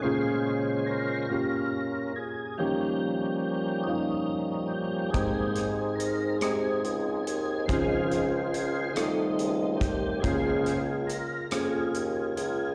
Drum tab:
HH |------|------|xxxxxx|xxxxxx|
SD |------|------|-r-r--|-r-r--|
BD |------|------|o-----|o----o|

HH |xxxxxx|
SD |-r-r--|
BD |o-----|